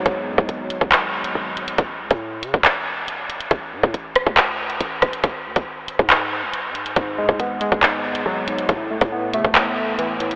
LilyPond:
<<
  \new Staff \with { instrumentName = "Synth keys" } { \clef bass \time 4/4 \key gis \phrygian \tempo 4 = 139 r1 | r1 | r1 | r1 |
gis,8 gis8 b8 gis8 gis,4 fis8 gis,8 | a,8 a8 b8 a8 a,4 e8 a,8 | }
  \new Staff \with { instrumentName = "808-style bass" } { \clef bass \time 4/4 \key gis \phrygian gis,,8 gis,16 gis,16 gis,,8. gis,,4~ gis,,16 gis,,4 | a,,8 cis,16 a,8. cis16 a,,2~ a,,16 | a,,8 a,16 a,16 a,,8. cis,4~ cis,16 a,,8 a,,8 | gis,,8 dis,16 gis,,4 gis,4 b,,8~ b,,32 gis,8~ gis,32 |
gis,,8 gis,16 gis,16 gis,,8. gis,,4~ gis,,16 gis,,4 | a,,8 cis,16 a,8. cis16 a,,2~ a,,16 | }
  \new DrumStaff \with { instrumentName = "Drums" } \drummode { \time 4/4 <hh bd>8. bd16 hh8 hh16 bd16 <hc hh>8. hh16 r8 hh16 hh16 | <hh bd>8. <hh bd>16 r8 hh16 bd16 <hc hh>4 hh8 hh16 hh16 | <hh bd>8. bd16 hh8 <hh ss>16 bd16 <hc hh>8. hh16 hh8 <hh bd ss>16 hh16 | <hh bd>8. <hh bd>16 r8 hh16 bd16 <hc hh>4 hh8 hh16 hh16 |
<hh bd>8. bd16 hh8 hh16 bd16 <hc hh>8. hh16 r8 hh16 hh16 | <hh bd>8. <hh bd>16 r8 hh16 bd16 <hc hh>4 hh8 hh16 hh16 | }
>>